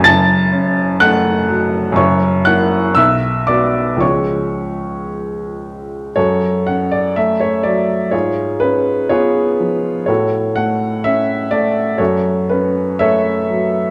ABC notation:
X:1
M:2/4
L:1/16
Q:1/4=61
K:F#m
V:1 name="Upright piano"
[aa']4 [ff']2 z2 | [cc']2 [ff']2 [ee']2 [dd']2 | [cc']4 z4 | [FAc]2 f d e c d2 |
[^EGc]2 B2 [EGc]4 | [FAc]2 f2 e2 d2 | [FAc]2 B2 [Ace]4 |]
V:2 name="Upright piano" clef=bass
[F,,,F,,]2 C2 A,2 F,2 | [F,,,F,,]2 [^A,E]2 B,,,2 [B,F]2 | [C,,^E,G,C]8 | F,,2 C2 A,2 F,2 |
G,,2 C2 B,2 ^E,2 | A,,2 A,2 C2 A,2 | F,,2 C2 A,2 F,2 |]